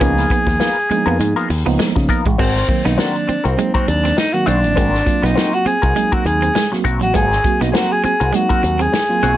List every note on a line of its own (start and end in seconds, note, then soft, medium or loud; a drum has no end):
0.00 0.24 C#2 loud
0.00 0.68 F3 medium
0.00 0.68 A#3 medium
0.00 0.29 B3 medium
0.00 0.68 B3 medium
0.00 0.13 C#4 medium
0.00 0.69 D#4 medium
0.00 0.29 F4 medium
0.00 1.79 G#4 medium
0.00 0.29 A#4 medium
0.00 kick loud
0.00 closed hi-hat medium
0.00 shaker medium
0.17 snare soft
0.17 shaker medium
0.30 0.43 B3 medium
0.30 kick loud
0.30 closed hi-hat medium
0.30 shaker medium
0.47 0.57 D#2 medium
0.47 muted clean electric guitar stroke medium
0.47 kick medium
0.47 snare soft
0.47 shaker soft
0.60 0.77 B3 medium
0.60 0.77 F4 medium
0.60 0.77 A#4 medium
0.60 muted clean electric guitar stroke soft
0.60 snare loud
0.60 closed hi-hat medium
0.60 shaker medium
0.78 shaker soft
0.89 1.46 F3 medium
0.89 1.03 G#3 medium
0.89 1.46 A#3 medium
0.89 1.46 B3 medium
0.89 0.98 D4 medium
0.89 muted clean electric guitar stroke soft
0.89 muted picked electric bass stroke soft
0.89 closed hi-hat medium
0.89 shaker medium
0.97 1.49 D#4 medium
1.06 1.17 F2 medium
1.06 1.17 B3 medium
1.06 1.17 F4 medium
1.06 1.17 A#4 medium
1.06 shaker medium
1.19 1.33 G#2 loud
1.19 1.33 G#3 medium
1.19 closed hi-hat medium
1.19 shaker medium
1.36 1.48 B3 medium
1.36 1.49 F4 medium
1.36 1.49 A#4 medium
1.36 shaker medium
1.50 1.63 D#2 medium
1.50 muted clean electric guitar stroke soft
1.50 open hi-hat medium
1.50 shaker medium
1.66 1.77 C#2 medium
1.66 2.21 F3 medium
1.66 2.21 A#3 medium
1.66 2.21 B3 medium
1.66 1.76 B3 medium
1.66 2.22 D#4 loud
1.66 muted clean electric guitar stroke medium
1.66 shaker medium
1.78 1.92 G#3 medium
1.78 muted clean electric guitar stroke soft
1.78 snare loud
1.78 closed hi-hat medium
1.78 shaker medium
1.96 2.07 C#3 medium
1.96 muted clean electric guitar stroke soft
1.96 kick medium
1.96 snare soft
1.96 shaker soft
2.09 2.25 B3 medium
2.09 2.25 F4 medium
2.09 2.24 A#4 medium
2.09 muted clean electric guitar stroke soft
2.09 kick medium
2.09 closed hi-hat medium
2.09 shaker medium
2.26 2.36 A1 medium
2.26 2.36 G#3 medium
2.26 kick medium
2.26 shaker medium
2.38 2.62 G#1 loud
2.38 2.51 G#3 medium
2.38 2.66 C4 medium
2.38 2.87 C4 medium
2.38 2.67 F#4 medium
2.38 2.67 A#4 medium
2.38 kick loud
2.38 crash loud
2.38 shaker medium
2.56 snare soft
2.56 shaker medium
2.68 3.36 D#3 medium
2.68 3.36 F#3 medium
2.68 3.36 A#3 medium
2.68 3.36 C4 medium
2.68 muted clean electric guitar stroke soft
2.68 kick loud
2.68 closed hi-hat medium
2.68 shaker medium
2.85 2.96 B1 medium
2.85 2.95 B3 medium
2.85 3.00 D#4 medium
2.85 muted clean electric guitar stroke medium
2.85 snare soft
2.85 closed hi-hat medium
2.85 shaker medium
2.98 3.15 C4 medium
2.98 3.47 D4 medium
2.98 3.15 F#4 medium
2.98 3.15 A#4 loud
2.98 snare loud
2.98 shaker medium
3.16 closed hi-hat soft
3.16 shaker soft
3.27 3.41 C4 medium
3.27 muted clean electric guitar stroke soft
3.27 muted picked electric bass stroke soft
3.27 closed hi-hat medium
3.27 shaker medium
3.44 3.55 C2 medium
3.44 3.55 C4 medium
3.44 3.74 C4 medium
3.44 3.55 F#4 medium
3.44 3.55 A#4 medium
3.44 closed hi-hat soft
3.44 shaker medium
3.58 4.14 F#3 medium
3.58 3.71 G#3 medium
3.58 4.14 A#3 medium
3.58 4.14 C4 medium
3.58 4.14 D#4 medium
3.58 muted clean electric guitar stroke soft
3.58 closed hi-hat medium
3.58 shaker medium
3.74 3.90 C4 medium
3.74 3.86 C4 medium
3.74 3.86 F#4 medium
3.74 3.87 A#4 medium
3.74 muted picked electric bass stroke soft
3.74 kick loud
3.74 closed hi-hat soft
3.74 shaker medium
3.87 4.11 D#2 medium
3.87 4.19 D4 loud
3.87 muted clean electric guitar stroke soft
3.87 closed hi-hat medium
3.87 shaker medium
4.04 4.14 C4 medium
4.04 muted clean electric guitar stroke soft
4.04 snare soft
4.04 closed hi-hat medium
4.04 shaker medium
4.17 4.35 D#4 loud
4.17 muted clean electric guitar stroke soft
4.17 snare loud
4.17 shaker medium
4.34 4.89 D#3 medium
4.34 4.89 F#3 medium
4.34 4.89 A#3 medium
4.34 4.89 C4 medium
4.34 4.49 F#4 loud
4.34 closed hi-hat soft
4.34 shaker soft
4.46 4.65 B1 medium
4.46 4.60 C4 medium
4.46 5.26 D4 loud
4.46 4.60 F#4 medium
4.46 4.60 C5 medium
4.46 closed hi-hat medium
4.63 4.75 A1 loud
4.63 muted clean electric guitar stroke medium
4.63 closed hi-hat medium
4.63 shaker medium
4.76 5.01 G#1 medium
4.76 4.89 G#3 medium
4.76 5.04 C4 medium
4.76 5.05 F#4 medium
4.76 5.05 A#4 loud
4.76 kick loud
4.76 closed hi-hat loud
4.76 shaker medium
4.94 snare soft
4.94 shaker soft
5.06 5.74 F#3 medium
5.06 5.74 A#3 medium
5.06 5.74 C4 medium
5.06 5.74 F4 medium
5.06 muted clean electric guitar stroke soft
5.06 kick medium
5.06 closed hi-hat medium
5.06 shaker medium
5.22 5.34 B1 medium
5.22 5.33 B3 medium
5.22 5.55 D#4 medium
5.22 muted clean electric guitar stroke soft
5.22 snare soft
5.22 closed hi-hat medium
5.22 shaker medium
5.35 5.52 C4 loud
5.35 5.53 F#4 loud
5.35 5.53 A#4 medium
5.35 snare loud
5.35 shaker medium
5.54 5.68 F#4 loud
5.54 closed hi-hat soft
5.54 shaker soft
5.65 5.78 C4 medium
5.65 6.14 G#4 medium
5.65 muted clean electric guitar stroke soft
5.65 muted picked electric bass stroke soft
5.65 closed hi-hat soft
5.65 shaker medium
5.82 5.93 C2 medium
5.82 5.93 C4 medium
5.82 5.93 F#4 medium
5.82 5.93 A#4 medium
5.82 kick medium
5.82 closed hi-hat medium
5.82 shaker medium
5.95 6.51 F#3 medium
5.95 6.08 G#3 medium
5.95 6.52 A#3 medium
5.95 6.52 C4 medium
5.95 6.52 D#4 medium
5.95 muted clean electric guitar stroke soft
5.95 closed hi-hat medium
5.95 shaker medium
6.12 6.24 C4 medium
6.12 6.25 F#4 medium
6.12 6.27 F#4 medium
6.12 6.25 A#4 medium
6.12 muted picked electric bass stroke soft
6.12 kick medium
6.12 shaker medium
6.25 6.49 D#2 medium
6.25 6.75 G#4 loud
6.25 muted clean electric guitar stroke soft
6.25 closed hi-hat medium
6.25 shaker medium
6.42 6.52 C4 medium
6.42 muted clean electric guitar stroke soft
6.42 closed hi-hat medium
6.42 shaker medium
6.55 6.67 G#3 medium
6.55 muted clean electric guitar stroke soft
6.55 snare loud
6.55 shaker medium
6.71 7.27 F#3 medium
6.71 7.27 A#3 medium
6.71 7.27 C4 medium
6.71 7.27 F#4 medium
6.71 muted clean electric guitar stroke soft
6.71 snare soft
6.71 shaker soft
6.84 7.02 B1 medium
6.84 7.01 C4 medium
6.84 7.01 F#4 medium
6.84 7.00 A#4 medium
6.84 kick medium
6.84 closed hi-hat medium
7.01 7.12 A1 medium
7.01 7.11 F#3 medium
7.01 7.17 F#4 loud
7.01 muted clean electric guitar stroke soft
7.01 closed hi-hat medium
7.01 shaker medium
7.14 7.39 G#1 loud
7.14 7.27 G#3 medium
7.14 7.26 B3 medium
7.14 7.27 F4 medium
7.14 7.63 G#4 loud
7.14 7.26 A4 medium
7.14 kick loud
7.14 closed hi-hat loud
7.14 shaker medium
7.26 7.42 C4 medium
7.26 7.42 F#4 medium
7.26 7.43 A#4 medium
7.32 snare soft
7.32 shaker medium
7.44 8.12 F#3 medium
7.44 8.12 A#3 medium
7.44 8.12 C4 medium
7.44 8.12 F#4 medium
7.44 muted clean electric guitar stroke soft
7.44 kick loud
7.44 closed hi-hat medium
7.44 shaker medium
7.61 7.72 B1 medium
7.61 7.71 B3 medium
7.61 7.71 D#4 medium
7.61 muted clean electric guitar stroke soft
7.61 snare soft
7.61 closed hi-hat medium
7.61 shaker medium
7.72 7.90 C4 medium
7.72 7.91 F#4 medium
7.72 7.77 G#4 medium
7.72 7.91 A#4 loud
7.72 snare loud
7.72 shaker medium
7.76 7.93 F#4 loud
7.92 8.04 G#4 loud
7.92 shaker medium
8.04 8.16 C4 medium
8.04 8.36 G#4 medium
8.04 muted clean electric guitar stroke soft
8.04 muted picked electric bass stroke soft
8.04 closed hi-hat medium
8.04 shaker soft
8.20 8.31 C2 medium
8.20 8.31 C4 medium
8.20 8.31 F#4 medium
8.20 8.31 A#4 medium
8.20 closed hi-hat medium
8.20 shaker medium
8.33 8.90 F#3 medium
8.33 8.45 G#3 medium
8.33 8.90 A#3 medium
8.33 8.90 C4 medium
8.33 8.90 D#4 medium
8.33 8.83 F#4 loud
8.33 closed hi-hat medium
8.33 shaker medium
8.49 8.61 C4 medium
8.49 8.62 F#4 medium
8.49 8.62 A#4 medium
8.49 muted picked electric bass stroke soft
8.49 kick medium
8.49 closed hi-hat soft
8.49 shaker medium
8.63 8.87 D#2 medium
8.63 muted clean electric guitar stroke soft
8.63 closed hi-hat medium
8.63 shaker medium
8.79 8.89 C4 medium
8.79 9.37 G#4 loud
8.79 muted clean electric guitar stroke soft
8.79 closed hi-hat medium
8.79 shaker medium
8.93 muted clean electric guitar stroke soft
8.93 snare loud
8.93 shaker medium
9.09 9.37 F#3 medium
9.09 9.37 A#3 medium
9.09 9.37 C4 medium
9.09 9.37 F4 medium
9.09 shaker soft
9.23 9.37 B1 medium
9.23 9.36 C4 medium
9.23 9.35 C4 medium
9.23 9.36 F#4 medium
9.23 9.36 C5 medium
9.23 closed hi-hat medium